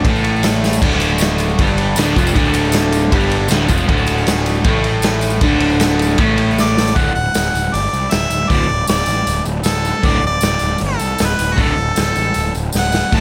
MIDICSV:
0, 0, Header, 1, 5, 480
1, 0, Start_track
1, 0, Key_signature, 2, "major"
1, 0, Tempo, 384862
1, 998, Time_signature, 4, 2, 24, 8
1, 16468, End_track
2, 0, Start_track
2, 0, Title_t, "Harmonica"
2, 0, Program_c, 0, 22
2, 8233, Note_on_c, 0, 74, 82
2, 8688, Note_on_c, 0, 78, 89
2, 8707, Note_off_c, 0, 74, 0
2, 8908, Note_off_c, 0, 78, 0
2, 8915, Note_on_c, 0, 78, 90
2, 9646, Note_on_c, 0, 74, 77
2, 9665, Note_off_c, 0, 78, 0
2, 10113, Note_on_c, 0, 76, 84
2, 10131, Note_off_c, 0, 74, 0
2, 10594, Note_on_c, 0, 74, 95
2, 10613, Note_off_c, 0, 76, 0
2, 11073, Note_off_c, 0, 74, 0
2, 11086, Note_on_c, 0, 74, 96
2, 11749, Note_off_c, 0, 74, 0
2, 12028, Note_on_c, 0, 69, 84
2, 12536, Note_on_c, 0, 74, 93
2, 12555, Note_off_c, 0, 69, 0
2, 12765, Note_off_c, 0, 74, 0
2, 12805, Note_on_c, 0, 74, 98
2, 13452, Note_off_c, 0, 74, 0
2, 13522, Note_on_c, 0, 69, 79
2, 14035, Note_on_c, 0, 71, 88
2, 14054, Note_off_c, 0, 69, 0
2, 14379, Note_on_c, 0, 66, 70
2, 14398, Note_off_c, 0, 71, 0
2, 14491, Note_on_c, 0, 69, 92
2, 14510, Note_off_c, 0, 66, 0
2, 14946, Note_off_c, 0, 69, 0
2, 14984, Note_on_c, 0, 69, 92
2, 15626, Note_off_c, 0, 69, 0
2, 15946, Note_on_c, 0, 78, 97
2, 16411, Note_on_c, 0, 81, 105
2, 16430, Note_off_c, 0, 78, 0
2, 16468, Note_off_c, 0, 81, 0
2, 16468, End_track
3, 0, Start_track
3, 0, Title_t, "Overdriven electric guitar"
3, 0, Program_c, 1, 29
3, 67, Note_on_c, 1, 45, 91
3, 84, Note_on_c, 1, 57, 105
3, 1004, Note_off_c, 1, 45, 0
3, 1012, Note_off_c, 1, 57, 0
3, 1024, Note_on_c, 1, 38, 98
3, 1037, Note_on_c, 1, 50, 110
3, 1962, Note_off_c, 1, 38, 0
3, 1968, Note_off_c, 1, 50, 0
3, 1992, Note_on_c, 1, 43, 99
3, 2000, Note_on_c, 1, 55, 105
3, 2446, Note_off_c, 1, 43, 0
3, 2450, Note_off_c, 1, 55, 0
3, 2468, Note_on_c, 1, 38, 105
3, 2479, Note_on_c, 1, 50, 106
3, 2684, Note_off_c, 1, 38, 0
3, 2689, Note_off_c, 1, 50, 0
3, 2693, Note_on_c, 1, 41, 89
3, 2712, Note_on_c, 1, 53, 93
3, 2916, Note_off_c, 1, 41, 0
3, 2921, Note_off_c, 1, 53, 0
3, 2923, Note_on_c, 1, 38, 87
3, 2926, Note_on_c, 1, 50, 107
3, 3870, Note_off_c, 1, 38, 0
3, 3872, Note_off_c, 1, 50, 0
3, 3906, Note_on_c, 1, 43, 90
3, 3910, Note_on_c, 1, 55, 88
3, 4356, Note_off_c, 1, 43, 0
3, 4361, Note_on_c, 1, 38, 99
3, 4363, Note_off_c, 1, 55, 0
3, 4370, Note_on_c, 1, 50, 102
3, 4581, Note_off_c, 1, 38, 0
3, 4586, Note_on_c, 1, 41, 84
3, 4594, Note_off_c, 1, 50, 0
3, 4605, Note_on_c, 1, 53, 104
3, 4821, Note_off_c, 1, 41, 0
3, 4826, Note_on_c, 1, 38, 100
3, 4831, Note_off_c, 1, 53, 0
3, 4841, Note_on_c, 1, 50, 109
3, 5780, Note_off_c, 1, 38, 0
3, 5788, Note_off_c, 1, 50, 0
3, 5789, Note_on_c, 1, 45, 93
3, 5803, Note_on_c, 1, 57, 99
3, 6741, Note_off_c, 1, 45, 0
3, 6748, Note_off_c, 1, 57, 0
3, 6771, Note_on_c, 1, 38, 100
3, 6775, Note_on_c, 1, 50, 107
3, 7712, Note_off_c, 1, 38, 0
3, 7712, Note_on_c, 1, 45, 99
3, 7726, Note_off_c, 1, 50, 0
3, 7726, Note_on_c, 1, 57, 102
3, 8663, Note_off_c, 1, 45, 0
3, 8670, Note_off_c, 1, 57, 0
3, 8670, Note_on_c, 1, 38, 88
3, 8680, Note_on_c, 1, 45, 92
3, 8692, Note_on_c, 1, 50, 97
3, 8861, Note_off_c, 1, 38, 0
3, 8866, Note_off_c, 1, 45, 0
3, 8872, Note_off_c, 1, 50, 0
3, 10597, Note_on_c, 1, 38, 93
3, 10597, Note_on_c, 1, 45, 93
3, 10614, Note_on_c, 1, 50, 98
3, 10785, Note_off_c, 1, 38, 0
3, 10786, Note_off_c, 1, 45, 0
3, 10794, Note_off_c, 1, 50, 0
3, 12505, Note_on_c, 1, 38, 92
3, 12515, Note_on_c, 1, 45, 95
3, 12524, Note_on_c, 1, 50, 94
3, 12701, Note_off_c, 1, 38, 0
3, 12706, Note_off_c, 1, 45, 0
3, 12711, Note_off_c, 1, 50, 0
3, 14421, Note_on_c, 1, 38, 89
3, 14429, Note_on_c, 1, 45, 102
3, 14440, Note_on_c, 1, 50, 104
3, 14622, Note_off_c, 1, 38, 0
3, 14626, Note_off_c, 1, 45, 0
3, 14632, Note_off_c, 1, 50, 0
3, 16361, Note_on_c, 1, 38, 90
3, 16372, Note_on_c, 1, 45, 104
3, 16374, Note_on_c, 1, 50, 88
3, 16468, Note_off_c, 1, 38, 0
3, 16468, Note_off_c, 1, 45, 0
3, 16468, Note_off_c, 1, 50, 0
3, 16468, End_track
4, 0, Start_track
4, 0, Title_t, "Picked electric bass"
4, 0, Program_c, 2, 34
4, 60, Note_on_c, 2, 33, 92
4, 957, Note_off_c, 2, 33, 0
4, 1027, Note_on_c, 2, 26, 89
4, 1920, Note_off_c, 2, 26, 0
4, 1988, Note_on_c, 2, 31, 91
4, 2419, Note_off_c, 2, 31, 0
4, 2456, Note_on_c, 2, 26, 86
4, 2669, Note_off_c, 2, 26, 0
4, 2702, Note_on_c, 2, 29, 85
4, 2912, Note_off_c, 2, 29, 0
4, 2941, Note_on_c, 2, 26, 95
4, 3836, Note_off_c, 2, 26, 0
4, 3903, Note_on_c, 2, 31, 102
4, 4335, Note_off_c, 2, 31, 0
4, 4365, Note_on_c, 2, 26, 88
4, 4582, Note_off_c, 2, 26, 0
4, 4617, Note_on_c, 2, 29, 95
4, 4828, Note_off_c, 2, 29, 0
4, 4855, Note_on_c, 2, 26, 91
4, 5752, Note_off_c, 2, 26, 0
4, 5802, Note_on_c, 2, 33, 105
4, 6705, Note_off_c, 2, 33, 0
4, 6754, Note_on_c, 2, 26, 97
4, 7661, Note_off_c, 2, 26, 0
4, 7723, Note_on_c, 2, 33, 100
4, 8626, Note_off_c, 2, 33, 0
4, 8682, Note_on_c, 2, 26, 81
4, 8847, Note_off_c, 2, 26, 0
4, 8925, Note_on_c, 2, 26, 83
4, 9089, Note_off_c, 2, 26, 0
4, 9167, Note_on_c, 2, 26, 79
4, 9330, Note_off_c, 2, 26, 0
4, 9405, Note_on_c, 2, 26, 79
4, 9569, Note_off_c, 2, 26, 0
4, 9643, Note_on_c, 2, 31, 94
4, 9807, Note_off_c, 2, 31, 0
4, 9889, Note_on_c, 2, 36, 77
4, 10052, Note_off_c, 2, 36, 0
4, 10129, Note_on_c, 2, 26, 83
4, 10292, Note_off_c, 2, 26, 0
4, 10351, Note_on_c, 2, 26, 86
4, 10520, Note_off_c, 2, 26, 0
4, 10602, Note_on_c, 2, 26, 81
4, 10767, Note_off_c, 2, 26, 0
4, 10832, Note_on_c, 2, 26, 87
4, 11001, Note_off_c, 2, 26, 0
4, 11074, Note_on_c, 2, 26, 76
4, 11242, Note_off_c, 2, 26, 0
4, 11313, Note_on_c, 2, 33, 89
4, 11482, Note_off_c, 2, 33, 0
4, 11555, Note_on_c, 2, 26, 94
4, 11724, Note_off_c, 2, 26, 0
4, 11784, Note_on_c, 2, 26, 83
4, 11957, Note_off_c, 2, 26, 0
4, 12011, Note_on_c, 2, 26, 81
4, 12359, Note_off_c, 2, 26, 0
4, 12513, Note_on_c, 2, 26, 90
4, 12683, Note_off_c, 2, 26, 0
4, 12755, Note_on_c, 2, 26, 93
4, 12924, Note_off_c, 2, 26, 0
4, 12994, Note_on_c, 2, 26, 89
4, 13164, Note_off_c, 2, 26, 0
4, 13235, Note_on_c, 2, 26, 86
4, 13405, Note_off_c, 2, 26, 0
4, 13485, Note_on_c, 2, 31, 103
4, 13651, Note_off_c, 2, 31, 0
4, 13722, Note_on_c, 2, 36, 83
4, 13890, Note_off_c, 2, 36, 0
4, 13967, Note_on_c, 2, 26, 88
4, 14133, Note_off_c, 2, 26, 0
4, 14208, Note_on_c, 2, 26, 82
4, 14374, Note_off_c, 2, 26, 0
4, 14444, Note_on_c, 2, 26, 98
4, 14612, Note_off_c, 2, 26, 0
4, 14675, Note_on_c, 2, 26, 87
4, 14847, Note_off_c, 2, 26, 0
4, 14931, Note_on_c, 2, 26, 85
4, 15097, Note_off_c, 2, 26, 0
4, 15172, Note_on_c, 2, 33, 84
4, 15338, Note_off_c, 2, 33, 0
4, 15414, Note_on_c, 2, 26, 96
4, 15580, Note_off_c, 2, 26, 0
4, 15646, Note_on_c, 2, 26, 83
4, 15814, Note_off_c, 2, 26, 0
4, 15894, Note_on_c, 2, 26, 83
4, 16230, Note_off_c, 2, 26, 0
4, 16373, Note_on_c, 2, 26, 85
4, 16468, Note_off_c, 2, 26, 0
4, 16468, End_track
5, 0, Start_track
5, 0, Title_t, "Drums"
5, 58, Note_on_c, 9, 36, 109
5, 59, Note_on_c, 9, 51, 98
5, 183, Note_off_c, 9, 36, 0
5, 184, Note_off_c, 9, 51, 0
5, 196, Note_on_c, 9, 54, 28
5, 304, Note_on_c, 9, 51, 67
5, 312, Note_off_c, 9, 54, 0
5, 312, Note_on_c, 9, 54, 26
5, 429, Note_off_c, 9, 51, 0
5, 437, Note_off_c, 9, 54, 0
5, 449, Note_on_c, 9, 54, 29
5, 535, Note_on_c, 9, 51, 93
5, 548, Note_off_c, 9, 54, 0
5, 548, Note_on_c, 9, 54, 90
5, 551, Note_on_c, 9, 38, 105
5, 660, Note_off_c, 9, 51, 0
5, 672, Note_off_c, 9, 54, 0
5, 676, Note_off_c, 9, 38, 0
5, 799, Note_on_c, 9, 38, 64
5, 799, Note_on_c, 9, 54, 78
5, 910, Note_off_c, 9, 54, 0
5, 910, Note_on_c, 9, 54, 83
5, 924, Note_off_c, 9, 38, 0
5, 1021, Note_on_c, 9, 36, 100
5, 1026, Note_on_c, 9, 49, 99
5, 1026, Note_on_c, 9, 51, 94
5, 1035, Note_off_c, 9, 54, 0
5, 1146, Note_off_c, 9, 36, 0
5, 1150, Note_on_c, 9, 54, 30
5, 1151, Note_off_c, 9, 49, 0
5, 1151, Note_off_c, 9, 51, 0
5, 1246, Note_off_c, 9, 54, 0
5, 1246, Note_on_c, 9, 54, 68
5, 1264, Note_on_c, 9, 51, 80
5, 1371, Note_off_c, 9, 54, 0
5, 1389, Note_off_c, 9, 51, 0
5, 1474, Note_on_c, 9, 54, 96
5, 1510, Note_on_c, 9, 51, 92
5, 1526, Note_on_c, 9, 38, 110
5, 1599, Note_off_c, 9, 54, 0
5, 1611, Note_on_c, 9, 54, 26
5, 1635, Note_off_c, 9, 51, 0
5, 1651, Note_off_c, 9, 38, 0
5, 1724, Note_off_c, 9, 54, 0
5, 1724, Note_on_c, 9, 54, 78
5, 1745, Note_on_c, 9, 51, 72
5, 1848, Note_off_c, 9, 54, 0
5, 1864, Note_on_c, 9, 54, 28
5, 1870, Note_off_c, 9, 51, 0
5, 1978, Note_on_c, 9, 51, 102
5, 1982, Note_on_c, 9, 36, 106
5, 1988, Note_off_c, 9, 54, 0
5, 2086, Note_on_c, 9, 54, 31
5, 2103, Note_off_c, 9, 51, 0
5, 2106, Note_off_c, 9, 36, 0
5, 2211, Note_off_c, 9, 54, 0
5, 2214, Note_on_c, 9, 54, 31
5, 2217, Note_on_c, 9, 51, 78
5, 2338, Note_off_c, 9, 54, 0
5, 2342, Note_off_c, 9, 51, 0
5, 2444, Note_on_c, 9, 54, 98
5, 2465, Note_on_c, 9, 51, 94
5, 2482, Note_on_c, 9, 38, 98
5, 2568, Note_off_c, 9, 54, 0
5, 2590, Note_off_c, 9, 51, 0
5, 2606, Note_off_c, 9, 38, 0
5, 2698, Note_on_c, 9, 51, 72
5, 2699, Note_on_c, 9, 36, 98
5, 2723, Note_on_c, 9, 54, 76
5, 2823, Note_off_c, 9, 36, 0
5, 2823, Note_off_c, 9, 51, 0
5, 2828, Note_off_c, 9, 54, 0
5, 2828, Note_on_c, 9, 54, 75
5, 2938, Note_on_c, 9, 36, 105
5, 2940, Note_on_c, 9, 51, 94
5, 2953, Note_off_c, 9, 54, 0
5, 3058, Note_on_c, 9, 54, 28
5, 3063, Note_off_c, 9, 36, 0
5, 3065, Note_off_c, 9, 51, 0
5, 3164, Note_off_c, 9, 54, 0
5, 3164, Note_on_c, 9, 54, 73
5, 3174, Note_on_c, 9, 51, 77
5, 3288, Note_off_c, 9, 54, 0
5, 3298, Note_off_c, 9, 51, 0
5, 3305, Note_on_c, 9, 54, 32
5, 3392, Note_off_c, 9, 54, 0
5, 3392, Note_on_c, 9, 54, 97
5, 3408, Note_on_c, 9, 51, 85
5, 3425, Note_on_c, 9, 38, 116
5, 3517, Note_off_c, 9, 54, 0
5, 3533, Note_off_c, 9, 51, 0
5, 3549, Note_off_c, 9, 38, 0
5, 3645, Note_on_c, 9, 51, 75
5, 3654, Note_on_c, 9, 54, 66
5, 3765, Note_off_c, 9, 54, 0
5, 3765, Note_on_c, 9, 54, 30
5, 3770, Note_off_c, 9, 51, 0
5, 3890, Note_off_c, 9, 54, 0
5, 3894, Note_on_c, 9, 36, 110
5, 3894, Note_on_c, 9, 51, 110
5, 3999, Note_on_c, 9, 54, 28
5, 4018, Note_off_c, 9, 36, 0
5, 4019, Note_off_c, 9, 51, 0
5, 4111, Note_off_c, 9, 54, 0
5, 4111, Note_on_c, 9, 54, 28
5, 4134, Note_on_c, 9, 51, 73
5, 4235, Note_off_c, 9, 54, 0
5, 4259, Note_off_c, 9, 51, 0
5, 4345, Note_on_c, 9, 54, 103
5, 4372, Note_on_c, 9, 51, 92
5, 4389, Note_on_c, 9, 38, 105
5, 4469, Note_off_c, 9, 54, 0
5, 4497, Note_off_c, 9, 51, 0
5, 4513, Note_off_c, 9, 38, 0
5, 4595, Note_on_c, 9, 54, 75
5, 4609, Note_on_c, 9, 36, 99
5, 4609, Note_on_c, 9, 51, 68
5, 4708, Note_off_c, 9, 54, 0
5, 4708, Note_on_c, 9, 54, 70
5, 4733, Note_off_c, 9, 51, 0
5, 4734, Note_off_c, 9, 36, 0
5, 4833, Note_off_c, 9, 54, 0
5, 4847, Note_on_c, 9, 36, 106
5, 4848, Note_on_c, 9, 51, 90
5, 4958, Note_on_c, 9, 54, 25
5, 4972, Note_off_c, 9, 36, 0
5, 4972, Note_off_c, 9, 51, 0
5, 5070, Note_off_c, 9, 54, 0
5, 5070, Note_on_c, 9, 54, 68
5, 5080, Note_on_c, 9, 51, 78
5, 5195, Note_off_c, 9, 54, 0
5, 5205, Note_off_c, 9, 51, 0
5, 5213, Note_on_c, 9, 54, 31
5, 5320, Note_on_c, 9, 51, 84
5, 5336, Note_on_c, 9, 38, 102
5, 5337, Note_off_c, 9, 54, 0
5, 5337, Note_on_c, 9, 54, 84
5, 5445, Note_off_c, 9, 51, 0
5, 5461, Note_off_c, 9, 38, 0
5, 5461, Note_off_c, 9, 54, 0
5, 5464, Note_on_c, 9, 54, 25
5, 5560, Note_off_c, 9, 54, 0
5, 5560, Note_on_c, 9, 54, 60
5, 5562, Note_on_c, 9, 51, 71
5, 5677, Note_off_c, 9, 54, 0
5, 5677, Note_on_c, 9, 54, 26
5, 5686, Note_off_c, 9, 51, 0
5, 5791, Note_on_c, 9, 51, 95
5, 5797, Note_on_c, 9, 36, 105
5, 5802, Note_off_c, 9, 54, 0
5, 5916, Note_off_c, 9, 51, 0
5, 5922, Note_off_c, 9, 36, 0
5, 6034, Note_on_c, 9, 51, 69
5, 6048, Note_on_c, 9, 54, 26
5, 6159, Note_off_c, 9, 51, 0
5, 6173, Note_off_c, 9, 54, 0
5, 6262, Note_on_c, 9, 54, 86
5, 6275, Note_on_c, 9, 51, 88
5, 6292, Note_on_c, 9, 38, 113
5, 6387, Note_off_c, 9, 54, 0
5, 6400, Note_off_c, 9, 51, 0
5, 6416, Note_off_c, 9, 38, 0
5, 6500, Note_on_c, 9, 54, 74
5, 6515, Note_on_c, 9, 51, 67
5, 6612, Note_off_c, 9, 54, 0
5, 6612, Note_on_c, 9, 54, 66
5, 6640, Note_off_c, 9, 51, 0
5, 6737, Note_off_c, 9, 54, 0
5, 6747, Note_on_c, 9, 51, 99
5, 6752, Note_on_c, 9, 36, 105
5, 6872, Note_off_c, 9, 51, 0
5, 6877, Note_off_c, 9, 36, 0
5, 6988, Note_on_c, 9, 51, 83
5, 7106, Note_on_c, 9, 54, 28
5, 7113, Note_off_c, 9, 51, 0
5, 7230, Note_on_c, 9, 51, 103
5, 7231, Note_off_c, 9, 54, 0
5, 7245, Note_on_c, 9, 54, 80
5, 7246, Note_on_c, 9, 38, 101
5, 7354, Note_off_c, 9, 51, 0
5, 7370, Note_off_c, 9, 54, 0
5, 7371, Note_off_c, 9, 38, 0
5, 7377, Note_on_c, 9, 54, 26
5, 7474, Note_on_c, 9, 51, 75
5, 7501, Note_off_c, 9, 54, 0
5, 7508, Note_on_c, 9, 54, 64
5, 7598, Note_off_c, 9, 51, 0
5, 7621, Note_off_c, 9, 54, 0
5, 7621, Note_on_c, 9, 54, 25
5, 7706, Note_on_c, 9, 51, 97
5, 7715, Note_on_c, 9, 36, 105
5, 7730, Note_off_c, 9, 54, 0
5, 7730, Note_on_c, 9, 54, 24
5, 7831, Note_off_c, 9, 51, 0
5, 7840, Note_off_c, 9, 36, 0
5, 7855, Note_off_c, 9, 54, 0
5, 7952, Note_on_c, 9, 51, 76
5, 8077, Note_off_c, 9, 51, 0
5, 8118, Note_on_c, 9, 54, 27
5, 8211, Note_off_c, 9, 54, 0
5, 8211, Note_on_c, 9, 54, 92
5, 8212, Note_on_c, 9, 38, 64
5, 8336, Note_off_c, 9, 54, 0
5, 8337, Note_off_c, 9, 38, 0
5, 8451, Note_on_c, 9, 38, 85
5, 8460, Note_on_c, 9, 54, 73
5, 8575, Note_off_c, 9, 38, 0
5, 8579, Note_off_c, 9, 54, 0
5, 8579, Note_on_c, 9, 54, 73
5, 8677, Note_on_c, 9, 46, 51
5, 8682, Note_on_c, 9, 36, 109
5, 8704, Note_off_c, 9, 54, 0
5, 8801, Note_off_c, 9, 46, 0
5, 8807, Note_off_c, 9, 36, 0
5, 8926, Note_on_c, 9, 54, 28
5, 9051, Note_off_c, 9, 54, 0
5, 9156, Note_on_c, 9, 46, 50
5, 9161, Note_on_c, 9, 54, 86
5, 9172, Note_on_c, 9, 38, 93
5, 9280, Note_off_c, 9, 46, 0
5, 9285, Note_off_c, 9, 54, 0
5, 9297, Note_off_c, 9, 38, 0
5, 9420, Note_on_c, 9, 54, 68
5, 9545, Note_off_c, 9, 54, 0
5, 9648, Note_on_c, 9, 46, 55
5, 9667, Note_on_c, 9, 54, 70
5, 9773, Note_off_c, 9, 46, 0
5, 9792, Note_off_c, 9, 54, 0
5, 9896, Note_on_c, 9, 54, 67
5, 10021, Note_off_c, 9, 54, 0
5, 10115, Note_on_c, 9, 54, 91
5, 10116, Note_on_c, 9, 46, 58
5, 10132, Note_on_c, 9, 38, 106
5, 10240, Note_off_c, 9, 46, 0
5, 10240, Note_off_c, 9, 54, 0
5, 10256, Note_off_c, 9, 38, 0
5, 10358, Note_on_c, 9, 54, 76
5, 10483, Note_off_c, 9, 54, 0
5, 10598, Note_on_c, 9, 54, 25
5, 10601, Note_on_c, 9, 36, 106
5, 10603, Note_on_c, 9, 46, 58
5, 10723, Note_off_c, 9, 54, 0
5, 10726, Note_off_c, 9, 36, 0
5, 10728, Note_off_c, 9, 46, 0
5, 10837, Note_on_c, 9, 54, 27
5, 10961, Note_off_c, 9, 54, 0
5, 11067, Note_on_c, 9, 54, 90
5, 11078, Note_on_c, 9, 46, 53
5, 11094, Note_on_c, 9, 38, 111
5, 11191, Note_off_c, 9, 54, 0
5, 11203, Note_off_c, 9, 46, 0
5, 11219, Note_off_c, 9, 38, 0
5, 11298, Note_on_c, 9, 54, 71
5, 11422, Note_off_c, 9, 54, 0
5, 11560, Note_on_c, 9, 46, 56
5, 11560, Note_on_c, 9, 54, 72
5, 11685, Note_off_c, 9, 46, 0
5, 11685, Note_off_c, 9, 54, 0
5, 11792, Note_on_c, 9, 54, 75
5, 11916, Note_off_c, 9, 54, 0
5, 12017, Note_on_c, 9, 54, 90
5, 12030, Note_on_c, 9, 46, 60
5, 12046, Note_on_c, 9, 38, 99
5, 12141, Note_off_c, 9, 54, 0
5, 12155, Note_off_c, 9, 46, 0
5, 12171, Note_off_c, 9, 38, 0
5, 12281, Note_on_c, 9, 54, 72
5, 12406, Note_off_c, 9, 54, 0
5, 12510, Note_on_c, 9, 54, 32
5, 12515, Note_on_c, 9, 36, 107
5, 12515, Note_on_c, 9, 46, 54
5, 12634, Note_off_c, 9, 54, 0
5, 12640, Note_off_c, 9, 36, 0
5, 12640, Note_off_c, 9, 46, 0
5, 12748, Note_on_c, 9, 54, 26
5, 12873, Note_off_c, 9, 54, 0
5, 12980, Note_on_c, 9, 54, 95
5, 12997, Note_on_c, 9, 46, 54
5, 13013, Note_on_c, 9, 38, 101
5, 13105, Note_off_c, 9, 54, 0
5, 13122, Note_off_c, 9, 46, 0
5, 13138, Note_off_c, 9, 38, 0
5, 13212, Note_on_c, 9, 54, 70
5, 13337, Note_off_c, 9, 54, 0
5, 13448, Note_on_c, 9, 54, 74
5, 13482, Note_on_c, 9, 46, 53
5, 13572, Note_off_c, 9, 54, 0
5, 13607, Note_off_c, 9, 46, 0
5, 13713, Note_on_c, 9, 54, 74
5, 13837, Note_off_c, 9, 54, 0
5, 13948, Note_on_c, 9, 54, 89
5, 13956, Note_on_c, 9, 46, 55
5, 13972, Note_on_c, 9, 38, 101
5, 14072, Note_off_c, 9, 54, 0
5, 14081, Note_off_c, 9, 46, 0
5, 14097, Note_off_c, 9, 38, 0
5, 14203, Note_on_c, 9, 54, 71
5, 14328, Note_off_c, 9, 54, 0
5, 14440, Note_on_c, 9, 36, 103
5, 14444, Note_on_c, 9, 46, 59
5, 14455, Note_on_c, 9, 54, 27
5, 14565, Note_off_c, 9, 36, 0
5, 14569, Note_off_c, 9, 46, 0
5, 14580, Note_off_c, 9, 54, 0
5, 14684, Note_on_c, 9, 54, 25
5, 14809, Note_off_c, 9, 54, 0
5, 14917, Note_on_c, 9, 54, 84
5, 14920, Note_on_c, 9, 46, 53
5, 14936, Note_on_c, 9, 38, 91
5, 15042, Note_off_c, 9, 54, 0
5, 15044, Note_off_c, 9, 46, 0
5, 15061, Note_off_c, 9, 38, 0
5, 15160, Note_on_c, 9, 54, 62
5, 15285, Note_off_c, 9, 54, 0
5, 15391, Note_on_c, 9, 46, 59
5, 15395, Note_on_c, 9, 54, 68
5, 15515, Note_off_c, 9, 46, 0
5, 15520, Note_off_c, 9, 54, 0
5, 15648, Note_on_c, 9, 54, 67
5, 15773, Note_off_c, 9, 54, 0
5, 15871, Note_on_c, 9, 54, 90
5, 15906, Note_on_c, 9, 38, 63
5, 15995, Note_off_c, 9, 54, 0
5, 16031, Note_off_c, 9, 38, 0
5, 16115, Note_on_c, 9, 54, 74
5, 16141, Note_on_c, 9, 38, 82
5, 16239, Note_off_c, 9, 54, 0
5, 16266, Note_off_c, 9, 38, 0
5, 16369, Note_on_c, 9, 36, 111
5, 16369, Note_on_c, 9, 46, 59
5, 16369, Note_on_c, 9, 49, 90
5, 16374, Note_on_c, 9, 54, 29
5, 16468, Note_off_c, 9, 36, 0
5, 16468, Note_off_c, 9, 46, 0
5, 16468, Note_off_c, 9, 49, 0
5, 16468, Note_off_c, 9, 54, 0
5, 16468, End_track
0, 0, End_of_file